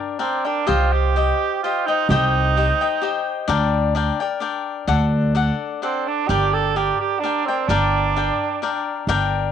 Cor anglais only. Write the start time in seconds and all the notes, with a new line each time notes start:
0.20 C4
0.45 D4
0.68 F4
0.93 G4
1.63 F4
1.86 D#4
2.09 D#4
5.83 C4
6.08 D4
6.28 G4
6.54 A4
6.77 G4
7.00 G4
7.19 D4
7.46 C4
7.68 D4